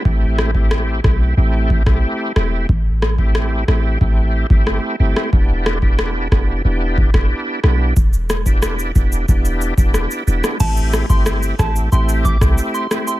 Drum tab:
CC |----------------|----------------|----------------|----------------|
SH |----------------|----------------|----------------|xxxxxxxxxxxxxxxx|
SD |--r-r-r----r--r-|--r-r-r-----r--r|--r-r-r----r--r-|--r-r-------r--r|
BD |o--o--o---oo----|o--o----o--o----|o--o--o---oo----|o--o--o-o--o----|

CC |x---------------|
SH |xxxxxxxxxxxxxxxx|
SD |--r-r-r----r--r-|
BD |o--o--o---oo----|